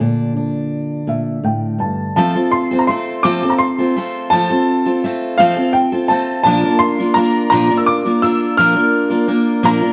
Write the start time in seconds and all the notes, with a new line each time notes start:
Already playing: D3
0.00 A#2 D4
0.36 D4
1.07 A#2 E5
1.44 A2 G5
1.79 G2 A5
2.16 F3 A3 C4 F4 A4 A5
2.35 C4 F4 A4
2.52 C6
2.71 C4 F4 A4
2.79 A#5
2.87 A3 C4 F4 A4 C6
3.23 F3 A3 C4 F4 A4 D6
3.43 C4 F4 A4
3.50 A#5
3.58 C6
3.78 C4 F4 A4
3.96 A3 C4 F4 A4
4.30 F3 A3 C4 F4 A4 A5
4.50 C4 F4 A4
4.86 C4 F4 A4
5.04 A3 C4 F4 A4
5.38 F3 A3 C4 F4 A4 F5
5.57 C4 F4 A4
5.73 G5
5.92 C4 F4 A4
6.08 A3 C4 F4 A4 A5
6.43 A#2 F3 A#3 D4 F4 A#4 A5
6.64 A#3 D4 F4 A#4
6.79 C6
6.98 A#3 D4 F4 A#4
7.14 A#3 D4 F4 A#4 A#5
7.50 A#2 F3 A#3 D4 F4 A#4 A#5
7.69 A#3 D4 F4 A#4
7.77 E6
7.86 D6
8.05 A#3 D4 F4 A#4
8.22 A#3 D4 F4 A#4 E6
8.57 A#2 F3 A#3 D4 F4 A#4 F6
8.75 A#3 D4 F4 A#4
9.10 A#3 D4 F4 A#4
9.28 A#3 D4 F4 A#4
9.63 A#2 F3 A#3 D4 F4 A#4 A#5
9.81 A#3 D4 F4 A#4